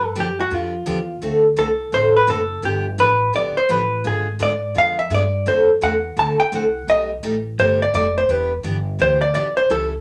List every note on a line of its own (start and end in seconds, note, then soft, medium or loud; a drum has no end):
0.00 0.15 G2 medium
0.05 0.16 A4 loud
0.15 0.50 F#2 medium
0.15 0.27 D3 medium
0.15 0.27 F3 medium
0.15 0.27 B3 medium
0.15 0.27 D4 medium
0.15 0.27 G4 medium
0.20 0.40 G4 medium
0.40 0.55 F#4 medium
0.51 0.85 F2 medium
0.51 0.72 D3 medium
0.51 0.73 F3 medium
0.51 0.73 B3 medium
0.51 0.73 D4 medium
0.51 0.73 G4 medium
0.55 1.24 F4 medium
0.86 1.21 E2 medium
0.86 0.98 D3 medium
0.86 0.98 F3 medium
0.86 0.98 B3 medium
0.86 0.98 D4 medium
0.86 0.98 G4 medium
1.21 1.56 D2 medium
1.21 1.43 D3 medium
1.21 1.44 A3 medium
1.21 1.44 C4 medium
1.21 1.44 F#4 medium
1.21 1.44 A4 medium
1.56 1.91 C2 medium
1.56 1.68 D3 medium
1.56 1.68 A3 medium
1.56 1.68 C4 medium
1.56 1.69 F#4 medium
1.56 1.69 A4 medium
1.56 1.91 A4 medium
1.92 2.27 A1 medium
1.92 2.14 D3 medium
1.92 2.14 A3 medium
1.92 2.14 C4 medium
1.92 2.14 F#4 medium
1.92 2.15 A4 medium
1.92 2.15 C5 loud
2.17 2.28 B4 medium
2.27 2.62 F#1 loud
2.27 2.39 D3 medium
2.27 2.39 A3 medium
2.27 2.39 C4 medium
2.27 2.40 F#4 medium
2.27 2.40 A4 medium
2.27 2.62 A4 medium
2.62 2.97 G1 medium
2.62 2.84 D3 medium
2.62 2.85 F3 medium
2.62 2.85 B3 medium
2.62 2.85 D4 medium
2.62 2.85 G4 medium
2.62 2.86 G4 medium
2.98 3.33 A1 medium
2.98 3.10 D3 medium
2.98 3.10 F3 medium
2.98 3.10 B3 medium
2.98 3.10 D4 medium
2.98 3.10 G4 medium
2.98 3.32 B4 medium
3.33 3.55 B1 medium
3.33 3.55 D3 soft
3.33 3.55 F3 medium
3.33 3.56 B3 medium
3.33 3.56 D4 medium
3.33 3.56 G4 medium
3.33 3.57 D5 loud
3.57 3.71 C5 medium
3.57 muted upright bass stroke soft
3.69 4.04 A1 medium
3.69 3.81 D3 medium
3.69 3.81 F3 medium
3.69 3.81 B3 medium
3.69 3.81 D4 medium
3.69 3.81 G4 medium
3.69 4.05 B4 medium
4.04 4.39 G#1 medium
4.04 4.26 D3 medium
4.04 4.26 G#3 medium
4.04 4.26 B3 medium
4.04 4.26 F4 medium
4.04 4.27 G#4 medium
4.04 4.28 G#4 medium
4.39 4.74 G#2 medium
4.39 4.51 D3 medium
4.39 4.51 G#3 medium
4.39 4.51 B3 medium
4.39 4.52 F4 medium
4.39 4.52 G#4 medium
4.39 4.74 D5 medium
4.75 5.09 F2 medium
4.75 4.97 D3 medium
4.75 4.97 G#3 medium
4.75 4.97 B3 medium
4.75 4.97 F4 medium
4.75 4.97 G#4 medium
4.75 4.99 F5 loud
4.99 5.11 E5 medium
5.10 5.45 G2 loud
5.10 5.22 D3 medium
5.10 5.22 G#3 medium
5.10 5.22 B3 medium
5.10 5.22 F4 medium
5.10 5.23 G#4 medium
5.14 5.46 D5 medium
5.46 5.81 F#2 medium
5.46 5.68 D3 medium
5.46 5.68 A3 medium
5.46 5.68 C4 medium
5.46 5.68 F#4 medium
5.46 5.68 A4 medium
5.46 5.69 C5 medium
5.81 6.16 E2 medium
5.81 5.93 D3 medium
5.81 5.93 A3 medium
5.81 5.93 C4 medium
5.81 5.93 F#4 medium
5.81 5.94 A4 medium
5.81 6.16 F#5 medium
6.16 6.38 D2 medium
6.16 6.38 D3 medium
6.16 6.39 A3 medium
6.16 6.39 C4 medium
6.16 6.39 F#4 medium
6.16 6.39 A4 medium
6.16 6.39 A5 loud
6.40 6.55 G5 loud
6.40 muted upright bass stroke soft
6.52 6.86 C2 medium
6.52 6.64 D3 medium
6.52 6.64 A3 medium
6.52 6.64 C4 medium
6.52 6.64 F#4 medium
6.52 6.64 A4 medium
6.52 6.89 F#5 medium
6.87 7.22 B1 medium
6.87 7.09 B2 medium
6.87 7.10 G3 medium
6.87 7.10 A3 medium
6.87 7.10 D#4 medium
6.87 7.10 G4 medium
6.87 7.03 D#5 loud
7.23 7.57 A1 medium
7.23 7.34 B2 medium
7.23 7.34 G3 medium
7.23 7.35 A3 medium
7.23 7.35 D#4 medium
7.23 7.35 G4 medium
7.58 7.93 G1 medium
7.58 7.80 B2 medium
7.58 7.80 G3 medium
7.58 7.80 A3 medium
7.58 7.81 D#4 medium
7.58 7.81 G4 medium
7.58 7.81 C5 medium
7.82 7.94 D5 loud
7.94 8.28 F1 loud
7.94 8.05 B2 medium
7.94 8.05 G3 medium
7.94 8.06 A3 medium
7.94 8.05 D#4 medium
7.94 8.06 G4 medium
7.94 8.16 D5 loud
8.18 8.32 C5 medium
8.29 8.63 E1 medium
8.29 8.51 E3 medium
8.29 8.51 B3 medium
8.29 8.51 D4 medium
8.29 8.51 G4 medium
8.29 8.52 B4 medium
8.63 8.98 G1 medium
8.63 8.75 E3 medium
8.63 8.76 B3 medium
8.63 8.76 D4 medium
8.63 8.76 G4 medium
8.99 9.34 D2 medium
8.99 9.21 E3 medium
8.99 9.21 B3 medium
8.99 9.21 D4 medium
8.99 9.21 G4 medium
8.99 9.21 C5 loud
9.21 9.34 D5 loud
9.34 9.69 B1 loud
9.34 9.46 E3 medium
9.34 9.46 B3 medium
9.34 9.47 D4 medium
9.34 9.47 G4 medium
9.34 9.56 D5 medium
9.57 9.70 C5 loud
9.70 10.01 C#2 medium
9.70 9.92 E3 medium
9.70 9.92 G3 medium
9.70 9.92 C#4 medium
9.70 9.92 E4 medium
9.70 9.92 A4 medium
9.70 9.84 A4 medium